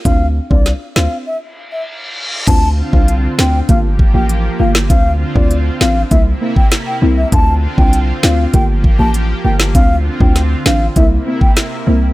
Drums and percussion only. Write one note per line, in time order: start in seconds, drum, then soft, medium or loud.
0.05 kick loud
0.05 closed hi-hat medium
0.51 kick medium
0.66 snare medium
0.66 closed hi-hat medium
0.96 snare loud
2.47 kick loud
2.47 closed hi-hat medium
2.47 crash loud
2.93 kick medium
3.08 closed hi-hat medium
3.39 snare loud
3.69 kick loud
3.69 closed hi-hat medium
3.99 kick loud
4.29 closed hi-hat medium
4.75 snare loud
4.90 kick loud
4.90 closed hi-hat medium
5.36 kick medium
5.51 closed hi-hat medium
5.81 snare loud
6.11 kick loud
6.11 closed hi-hat medium
6.56 kick loud
6.71 snare loud
6.71 closed hi-hat medium
7.32 kick loud
7.32 closed hi-hat medium
7.78 kick loud
7.93 closed hi-hat medium
8.23 snare loud
8.54 kick loud
8.54 closed hi-hat medium
8.84 kick loud
9.14 closed hi-hat medium
9.60 snare loud
9.75 kick loud
9.75 closed hi-hat medium
10.20 kick loud
10.36 snare medium
10.36 closed hi-hat medium
10.66 snare loud
10.96 kick loud
10.96 closed hi-hat medium
11.41 kick loud
11.57 cross-stick medium
11.57 snare loud
11.57 closed hi-hat medium